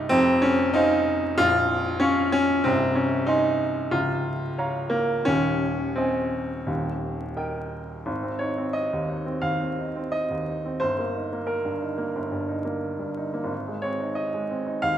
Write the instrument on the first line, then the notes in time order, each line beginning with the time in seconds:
grand piano
Already playing: C1 C2 D#4 G4 C5 D#5 G5
0.09 F1 F2 C4
0.42 C#4
0.74 D#4 C5 F5 G#5
1.38 A#0 A#1 F4
2.00 C#4 C#5 F5 C#6
2.32 C#4
2.64 C1 C2 C4
2.95 C#4
3.27 D#4 D#5 G#5 C6
3.91 C#1 C#2 F4
4.58 C#5 F5 A#5
4.90 A#3
5.25 D#1 D#2 C#4
5.96 C4 C5 D#5 G#5
6.67 D#1 D#2
7.36 A#4 D#5 G5
8.06 G#1
8.23 C4
8.39 D#4 C#5
8.58 C4
8.73 D#5
8.93 D#2
9.08 D#4
9.26 C4
9.41 D#2 F5
9.61 C4
9.79 D#4
9.96 C4
10.12 D#5
10.30 D#2
10.48 D#4
10.65 C4
10.80 G1 C5
10.99 A#3
11.14 D#4
11.32 A#3
11.47 A#4
11.65 G2
11.82 D#4
11.98 A#3
12.16 G1
12.32 G2
12.48 D#4
12.65 A#3
12.99 G2
13.17 D#4
13.34 A#3
13.44 G#1
13.67 G#3
13.82 C4 C#5
14.00 D#4
14.15 D#5
14.33 G#3
14.50 C4
14.66 D#4
14.82 D#2 F5